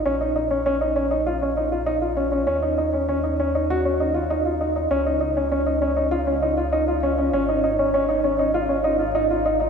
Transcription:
X:1
M:4/4
L:1/16
Q:1/4=99
K:Bbphr
V:1 name="Upright piano"
D E E D D E D E F D E F E F D D | D E E D D E D E G D E F E F E E | D E E D D E D E F D E F E F D D | D E E D D E D E F D E F E F E E |]
V:2 name="Detuned saw bass" clef=bass
B,,,16 | E,,16 | D,,16 | A,,,16 |]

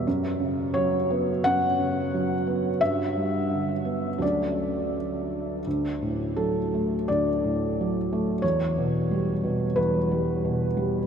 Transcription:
X:1
M:4/4
L:1/8
Q:1/4=88
K:D
V:1 name="Felt piano"
z2 c2 f4 | e4 d2 z2 | z2 A2 d4 | c4 B4 |]
V:2 name="Felt piano" clef=bass
F,, C, F, B, F,, C, F, B, | G,, G, D, B, [D,,F,A,C]4 | D,, A,, F, A, D,, A,, F, A, | E,, B,, G, B,, E,, G, B,, G, |]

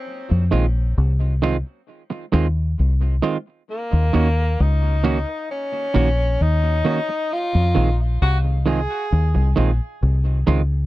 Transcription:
X:1
M:4/4
L:1/16
Q:1/4=66
K:Fphr
V:1 name="Tenor saxophone"
C2 z12 z2 | B,4 E4 D4 E4 | F2 z2 G2 A4 z6 |]
V:2 name="Clean electric guitar"
z2 [E,A,CF]2 z2 [E,A,CF]2 z2 [E,A,CF]2 z2 [E,A,CF]2 | z2 [E,B,DG]2 z2 [E,B,DG]2 z2 [E,B,DG]2 z2 [E,B,DG]2 | z2 [E,A,CF]2 z2 [E,A,CF]2 z2 [E,A,CF]2 z2 [E,A,CF]2 |]
V:3 name="Fingered electric bass" clef=bass
z F,, B,,,2 C,,3 z3 E,,2 C,,2 z2 | z E,, E,,2 D,,3 z3 B,,,2 E,,2 z2 | z F,, B,,,2 C,,3 z E,, C,, B,,, z C,,2 D,,2 |]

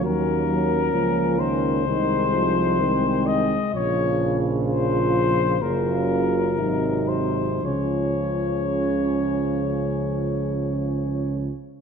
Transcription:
X:1
M:4/4
L:1/8
Q:1/4=63
K:Db
V:1 name="Cornet"
B3 c4 e | d z c2 B3 c | d6- d z |]
V:2 name="French horn section"
D4 E2 C2 | F4 F2 E2 | D6- D z |]
V:3 name="Trombone section" clef=bass
B,2 B,2 A,2 A,2 | F,4 G,2 G,2 | F,6- F, z |]
V:4 name="Euphonium" clef=bass
G, G, F, E, E, F, E,2 | D,4 D,2 C,2 | D,6- D, z |]
V:5 name="Tuba" clef=bass
E,,2 D,,2 C,,4 | B,,,4 G,,,2 A,,,2 | D,,6- D,, z |]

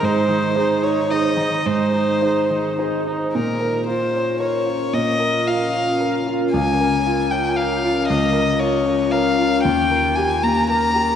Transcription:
X:1
M:3/4
L:1/8
Q:1/4=114
K:Bbdor
V:1 name="Violin"
c3 d e2 | c4 z2 | B2 c2 d2 | e2 f3 z |
a3 g f2 | e2 d2 f2 | g2 a b b2 |]
V:2 name="Ambient pad"
[EAc]6 | [EAc]6 | [DFB]6- | [DFB]6- |
[DFB]6- | [DFB]6 | [EGB]6 |]
V:3 name="Grand piano"
[A,,E] E, [EAc] E [EAc] E, | A,, E [EAc] E, [EAc] E | B,, B F D B F | B,, B F D B F |
D,, B F D B F | D,, B F D B F | E,, B G B, B G |]
V:4 name="Viola"
E E E E E E | E E E E E E | z6 | z6 |
z6 | z6 | z6 |]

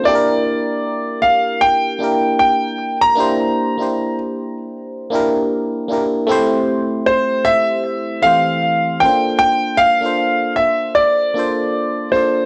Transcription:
X:1
M:4/4
L:1/16
Q:"Swing 16ths" 1/4=77
K:Bblyd
V:1 name="Grand piano"
d6 f2 g4 g3 b- | b4- b z8 z3 | z4 c2 e4 f4 g2 | g2 f4 e2 d6 c2 |]
V:2 name="FM electric piano"
[B,DEGAB]6 z4 [B,DEGB]4 z2 | [B,DEGc]2 z [B,DEGc]4- [B,DEGc] z2 [B,DEGB]3 z [B,DEGB] z | [A,CEGc]6 z4 [E,A,CGc]4 [B,^CDFA=c]2- | [B,^CDFA=c]2 z [B,DFAc]4- [B,DFAc] z2 [B,DFAc]3 z [B,DFAd] z |]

